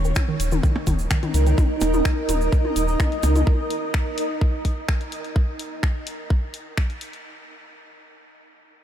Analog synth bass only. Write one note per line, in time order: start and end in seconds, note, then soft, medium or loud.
0.00 0.13 D#1 loud
0.40 0.60 D#1 loud
0.87 1.07 D#1 loud
1.34 1.54 C#2 loud
1.81 2.02 D#1 loud
2.29 2.49 D#1 loud
2.76 2.96 D#1 loud
3.23 3.43 C#2 loud